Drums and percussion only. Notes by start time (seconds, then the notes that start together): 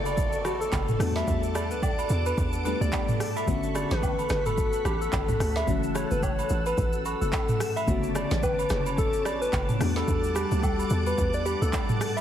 0.06 high agogo, shaker
0.17 kick, shaker
0.33 shaker
0.45 cross-stick, high agogo, shaker
0.62 shaker
0.72 kick, clap, high agogo, low woodblock, shaker
0.88 mid tom, shaker
1.00 cross-stick, open hi-hat, shaker
1.16 snare, high agogo, shaker
1.27 kick, shaker
1.43 shaker
1.55 cross-stick, high agogo, shaker
1.71 shaker
1.82 kick, low woodblock, shaker
1.99 high agogo, shaker
2.09 shaker
2.26 high agogo, shaker
2.38 kick, shaker
2.53 shaker
2.65 high agogo, shaker
2.82 shaker
2.92 kick, clap, high agogo, low woodblock, shaker
3.08 mid tom, shaker
3.20 cross-stick, open hi-hat, shaker
3.37 high agogo, shaker
3.47 kick, shaker
3.63 shaker
3.75 cross-stick, high agogo, shaker
3.91 snare, shaker
4.02 kick, low woodblock, shaker
4.19 high agogo, shaker
4.29 cross-stick, snare, shaker
4.46 mid tom, high agogo, shaker
4.58 kick, shaker
4.73 shaker
4.85 cross-stick, high agogo, shaker
5.02 shaker
5.12 kick, clap, high agogo, low woodblock, shaker
5.29 kick, mid tom, shaker
5.40 cross-stick, open hi-hat, shaker
5.56 snare, high agogo, shaker
5.68 kick, shaker
5.83 shaker
5.95 cross-stick, high agogo, shaker
6.11 shaker
6.22 kick, low woodblock, shaker
6.39 high agogo, shaker
6.49 shaker
6.66 high agogo, shaker
6.78 kick, shaker
6.93 shaker
7.05 high agogo, shaker
7.22 shaker
7.32 kick, clap, high agogo, low woodblock, shaker
7.49 mid tom, shaker
7.60 cross-stick, open hi-hat, shaker
7.77 high agogo, shaker
7.88 kick, shaker
8.03 shaker
8.15 cross-stick, high agogo, shaker
8.31 snare, shaker
8.43 kick, low woodblock, shaker
8.59 high agogo, shaker
8.69 cross-stick, snare, shaker
8.86 high agogo, shaker
8.98 kick, shaker
9.13 shaker
9.25 cross-stick, high agogo, shaker
9.42 shaker
9.53 kick, clap, high agogo, low woodblock, shaker
9.69 mid tom, shaker
9.81 cross-stick, open hi-hat, shaker
9.96 snare, high agogo, shaker
10.08 kick, shaker
10.24 shaker
10.35 cross-stick, high agogo, shaker
10.51 shaker
10.63 kick, low woodblock, shaker
10.79 high agogo, shaker
10.90 shaker
11.06 high agogo, shaker
11.18 kick, shaker
11.33 shaker
11.46 high agogo, shaker
11.62 shaker
11.73 kick, clap, high agogo, low woodblock, shaker
11.89 mid tom, shaker
12.01 cross-stick, open hi-hat, shaker
12.17 high agogo, shaker